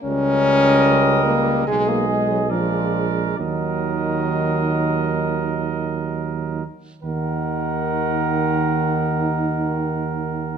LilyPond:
<<
  \new Staff \with { instrumentName = "Cornet" } { \time 4/4 \key ees \minor \tempo 4 = 67 ees''2 ees''4 d''4 | ees''2.~ ees''8 r8 | ges''1 | }
  \new Staff \with { instrumentName = "Trumpet" } { \time 4/4 \key ees \minor bes'2 aes'4 bes'4 | bes'2.~ bes'8 r8 | bes'1 | }
  \new Staff \with { instrumentName = "French horn" } { \clef bass \time 4/4 \key ees \minor des'4. bes8 aes16 bes16 aes16 ges16 f8. r16 | ees2.~ ees8 r8 | ees1 | }
  \new Staff \with { instrumentName = "Trombone" } { \clef bass \time 4/4 \key ees \minor g2 aes4 aes4 | ges2.~ ges8 r8 | ees1 | }
  \new Staff \with { instrumentName = "Tuba" } { \clef bass \time 4/4 \key ees \minor des,2 ces,4 bes,,4 | ees,2.~ ees,8 r8 | ees,1 | }
>>